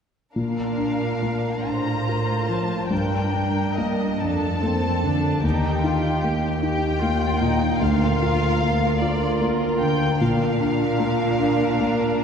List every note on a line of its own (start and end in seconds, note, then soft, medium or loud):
0.35 1.63 A#2 soft
0.35 1.62 D4 soft
0.35 1.63 A#4 soft
0.35 1.63 F5 soft
0.78 1.49 D4 soft
1.23 1.92 A#3 soft
1.65 2.91 A2 soft
1.65 2.34 D4 soft
1.65 2.91 F4 soft
1.65 2.89 C5 soft
1.65 2.49 A#5 medium
2.09 2.75 A#4 soft
2.49 2.91 F3 soft
2.49 2.91 A5 soft
2.89 4.17 G2 soft
2.89 4.19 G2 soft
2.89 4.19 D4 soft
2.89 4.22 A#4 soft
2.89 3.75 G5 medium
3.34 4.04 D4 soft
3.76 4.47 A#3 soft
3.76 4.21 D#5 soft
4.21 5.44 F2 soft
4.21 4.87 D4 soft
4.21 4.62 D4 soft
4.21 5.44 A4 soft
4.21 5.43 A5 medium
4.63 5.27 A#3 soft
4.63 5.03 C4 soft
5.03 5.43 D3 soft
5.03 5.43 D4 soft
5.43 7.78 D#2 soft
5.43 5.83 D#4 soft
5.43 6.22 G4 soft
5.43 6.61 G5 medium
5.84 6.47 D#4 soft
5.84 6.23 F4 soft
6.23 6.87 A#3 soft
6.23 6.61 G4 soft
6.62 7.26 D#4 soft
6.62 7.01 G4 medium
6.62 7.79 G5 medium
7.02 7.66 A#3 soft
7.02 7.42 F4 soft
7.41 7.81 A#2 soft
7.41 7.82 D#4 soft
7.80 10.16 D2 soft
7.80 10.16 D2 medium
7.80 9.00 F4 medium
7.80 8.99 A#4 soft
7.80 9.01 F5 medium
8.22 8.86 F4 soft
8.62 9.26 A#3 soft
9.01 10.18 F4 soft
9.01 9.65 F4 soft
9.01 10.18 A#4 soft
9.01 9.41 D5 medium
9.41 10.05 A#3 soft
9.80 10.21 D3 soft
9.80 10.18 G5 medium
10.19 12.24 A#2 medium
10.19 12.24 A#2 soft
10.19 12.24 D4 medium
10.19 12.24 A#4 soft
10.19 12.24 F5 medium
10.61 11.23 D4 soft
11.00 11.64 A#3 soft
11.40 12.07 D4 soft
11.81 12.24 A#3 soft